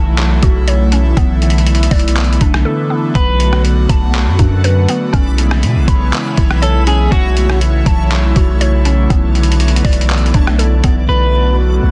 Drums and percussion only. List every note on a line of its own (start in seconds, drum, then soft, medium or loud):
0.18 clap loud
0.18 closed hi-hat medium
0.43 kick medium
0.43 closed hi-hat medium
0.68 closed hi-hat medium
0.92 closed hi-hat medium
1.17 kick loud
1.17 closed hi-hat medium
1.42 closed hi-hat soft
1.50 closed hi-hat medium
1.58 closed hi-hat medium
1.66 closed hi-hat medium
1.75 closed hi-hat medium
1.83 closed hi-hat medium
1.91 kick medium
1.91 closed hi-hat medium
1.91 open hi-hat medium
2.00 closed hi-hat medium
2.08 closed hi-hat medium
2.16 clap loud
2.16 closed hi-hat medium
2.24 closed hi-hat medium
2.33 closed hi-hat soft
2.41 kick medium
2.41 closed hi-hat medium
2.54 cross-stick loud
3.15 kick loud
3.15 closed hi-hat medium
3.40 closed hi-hat medium
3.53 cross-stick loud
3.65 closed hi-hat medium
3.89 kick medium
3.89 closed hi-hat medium
4.14 clap loud
4.14 closed hi-hat medium
4.39 kick medium
4.39 closed hi-hat medium
4.64 closed hi-hat medium
4.89 closed hi-hat medium
5.13 kick loud
5.13 closed hi-hat medium
5.38 closed hi-hat medium
5.51 cross-stick loud
5.63 closed hi-hat medium
5.88 kick medium
5.88 closed hi-hat medium
6.13 clap loud
6.13 closed hi-hat medium
6.37 kick medium
6.37 closed hi-hat medium
6.51 cross-stick medium
6.63 closed hi-hat medium
6.87 closed hi-hat medium
7.12 kick loud
7.12 closed hi-hat medium
7.37 closed hi-hat medium
7.50 cross-stick medium
7.61 closed hi-hat medium
7.86 kick medium
7.86 closed hi-hat medium
8.11 clap loud
8.11 closed hi-hat medium
8.36 kick medium
8.36 closed hi-hat medium
8.61 closed hi-hat medium
8.85 closed hi-hat medium
9.10 kick loud
9.10 closed hi-hat medium
9.35 closed hi-hat soft
9.43 closed hi-hat medium
9.52 closed hi-hat medium
9.60 closed hi-hat medium
9.68 closed hi-hat medium
9.76 closed hi-hat medium
9.85 kick loud
9.85 closed hi-hat medium
9.85 open hi-hat medium
9.93 closed hi-hat medium
10.01 closed hi-hat medium
10.09 clap loud
10.09 closed hi-hat medium
10.18 closed hi-hat medium
10.26 closed hi-hat soft
10.34 kick medium
10.34 closed hi-hat medium
10.47 cross-stick loud
10.59 closed hi-hat medium
10.84 kick medium
10.84 closed hi-hat medium